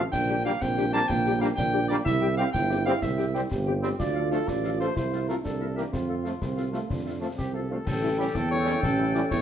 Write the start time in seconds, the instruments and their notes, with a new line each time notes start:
0.12 tuba A#1, euphonium D4, cornet G5, concert bass drum, snare, crash
0.28 french horn section G3 D4 G4, woodwind section G4 G5
0.44 french horn section G3 D4 G4, trombone section G3 A#3, woodwind section G4 G5, cornet F5, snare
0.61 tuba A#1, euphonium C4, cornet G5, concert bass drum, snare
0.77 french horn section G3 D4 G4, woodwind section G4 G5, snare
0.92 trombone section G3 A#3, french horn section G3 D4 G4, woodwind section G4 G5, cornet A5, snare
1.08 tuba A#1, euphonium A#3, cornet G5, concert bass drum, snare
1.26 french horn section G3 D4 G4, woodwind section G4 G5, snare
1.39 trombone section G3 A#3, french horn section G3 D4 G4, woodwind section G4 G5, cornet F5, snare
1.56 tuba A#1, euphonium D4, cornet G5, concert bass drum, snare
1.72 french horn section G3 D4 G4, woodwind section G4 G5
1.88 french horn section G3 D4 G4, trombone section G3 A#3, woodwind section G4 G5, cornet D5, snare
2.04 tuba C2, euphonium E4, cornet E5, concert bass drum, snare
2.21 french horn section G3 C4 G4, woodwind section G4 G5
2.37 french horn section G3 C4 G4, trombone section G3 C4, woodwind section G4 G5, cornet F5, snare
2.53 tuba G1, euphonium E4, cornet G5, concert bass drum, snare
2.69 french horn section G3 C4 G4, woodwind section G4 G5, snare
2.85 trombone section G3 C4, french horn section G3 C4 G4, woodwind section G4 G5, cornet F5, snare
3.02 tuba C2, cornet E5, concert bass drum, snare
3.18 french horn section G3 C4 G4, woodwind section G4 G5, snare
3.34 trombone section G3 C4, french horn section G3 C4 G4, woodwind section G4 G5, snare
3.51 tuba G1, euphonium G4, concert bass drum, snare
3.66 french horn section G3 C4 G4, woodwind section G4 G5
3.82 trombone section G3 C4, french horn section G3 C4 G4, woodwind section G4 G5, snare
3.99 tuba D2, euphonium F4, cornet D5, concert bass drum, snare, crash
4.13 french horn section F3 A3 D4, woodwind section A4 F5
4.30 trombone section F3 A3, french horn section F3 A3 D4, woodwind section A4 F5, cornet A4, snare
4.48 tuba A1, cornet D5, concert bass drum, snare
4.63 french horn section F3 A3 D4, woodwind section A4 F5, snare
4.80 french horn section F3 A3 D4, trombone section F3 A3, woodwind section A4 F5, cornet C5, snare
4.95 tuba C2, euphonium E4, cornet C5, concert bass drum, snare
5.12 french horn section A3 C4 F4, woodwind section A4 F5, snare
5.28 trombone section F3 A3, french horn section A3 C4 F4, woodwind section A4 F5, cornet A#4, snare
5.44 tuba C2, euphonium D4, cornet A4, concert bass drum, snare
5.60 french horn section A#3 D4 E4, woodwind section A#4 E5
5.75 trombone section E3 A#3, french horn section A#3 D4 E4, cornet G4, woodwind section A#4 E5, snare
5.92 tuba F2, euphonium C4, cornet F4, concert bass drum, snare
6.08 french horn section A3 C4 F4, woodwind section A4 F5
6.24 trombone section F3 A3, french horn section A3 C4 F4, woodwind section A4 F5, snare
6.40 tuba C2, euphonium C4, concert bass drum, snare
6.57 french horn section A3 C4 F4, woodwind section A4 F5, snare
6.71 trombone section F3 A3, euphonium A3, french horn section A3 C4 F4, woodwind section A4 F5, snare
6.90 tuba F2, euphonium D4, concert bass drum, snare
7.05 french horn section A3 C4 F4, woodwind section A4 F5
7.19 trombone section F3 A3, french horn section A3 C4 F4, euphonium C4, cornet A4, woodwind section A4 F5
7.37 tuba C2, euphonium C4, cornet G4, concert bass drum, snare
7.54 french horn section A3 C4 F4, woodwind section A4 F5, cornet A4
7.69 trombone section F3 A3, french horn section A3 C4 F4, euphonium D4, woodwind section A4 F5
7.86 tuba A1, woodwind section A4 G5, cornet A4, concert bass drum, snare, crash
8.02 french horn section G3 C#4 E4
8.17 trombone section G3 C#4, french horn section G3 C#4 E4, cornet G4
8.34 tuba E2, euphonium E4, cornet A4, concert bass drum, snare
8.51 french horn section G3 C#4 E4, cornet C#5
8.65 trombone section G3 C#4, french horn section G3 C#4 E4, snare
8.82 tuba A1, euphonium C#4, cornet A4, concert bass drum, snare
8.99 french horn section G3 C#4 E4
9.14 trombone section G3 C#4, french horn section G3 C#4 E4, cornet D5, snare
9.31 tuba E2, euphonium E4, cornet C#5, concert bass drum, snare